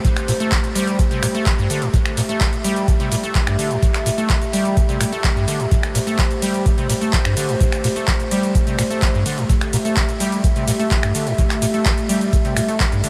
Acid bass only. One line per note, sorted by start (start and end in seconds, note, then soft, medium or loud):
0.05 0.09 A2 loud
0.28 0.32 A#2 loud
0.40 0.53 A3 medium
0.52 0.58 D3 loud
0.75 1.01 G3 loud
0.99 1.03 A2 loud
1.11 1.21 C3 medium
1.23 1.27 A#2 loud
1.35 1.48 A3 medium
1.46 1.53 D3 loud
1.58 1.68 G2 loud
1.70 1.83 D3 medium
1.82 1.88 A2 medium
1.94 1.97 A2 loud
2.17 2.21 A#2 loud
2.29 2.42 A3 medium
2.41 2.47 D3 loud
2.64 2.90 G3 loud
2.88 2.92 A2 loud
3.00 3.10 C3 medium
3.12 3.16 A#2 loud
3.23 3.37 A3 medium
3.35 3.42 D3 loud
3.47 3.57 G2 loud
3.59 3.72 D3 medium
3.71 3.77 A2 medium
3.82 3.86 A2 loud
4.06 4.10 A#2 loud
4.18 4.31 A3 medium
4.30 4.36 D3 loud
4.53 4.78 G3 loud
4.77 4.81 A2 loud
4.89 4.98 C3 medium
5.00 5.04 A#2 loud
5.12 5.25 A3 medium
5.24 5.31 D3 loud
5.36 5.46 G2 loud
5.48 5.61 D3 medium
5.60 5.66 A2 medium
5.71 5.75 A2 loud
5.95 5.99 A#2 loud
6.07 6.20 A3 medium
6.19 6.25 D3 loud
6.42 6.67 G3 loud
6.66 6.70 A2 loud
6.78 6.87 C3 medium
6.89 6.93 A#2 loud
7.01 7.15 A3 medium
7.13 7.20 D3 loud
7.25 7.35 G2 loud
7.37 7.50 D3 medium
7.49 7.55 A2 medium
7.60 7.64 A2 loud
7.84 7.88 A#2 loud
7.96 8.09 A3 medium
8.08 8.14 D3 loud
8.31 8.56 G3 loud
8.55 8.59 A2 loud
8.67 8.77 C3 medium
8.78 8.82 A#2 loud
8.90 9.04 A3 medium
9.02 9.09 D3 loud
9.14 9.24 G2 loud
9.26 9.39 D3 medium
9.38 9.44 A2 medium
9.49 9.53 A2 loud
9.73 9.77 A#2 loud
9.85 9.98 A3 medium
9.97 10.03 D3 loud
10.20 10.45 G3 loud
10.44 10.48 A2 loud
10.56 10.66 C3 medium
10.68 10.71 A#2 loud
10.79 10.93 A3 medium
10.91 10.98 D3 loud
11.03 11.13 G2 loud
11.15 11.28 D3 medium
11.27 11.33 A2 medium
11.38 11.42 A2 loud
11.62 11.66 A#2 loud
11.74 11.87 A3 medium
11.86 11.92 D3 loud
12.09 12.34 G3 loud
12.33 12.37 A2 loud
12.45 12.54 C3 medium
12.56 12.60 A#2 loud
12.68 12.82 A3 medium
12.80 12.87 D3 loud
12.92 13.02 G2 loud
13.04 13.09 D3 medium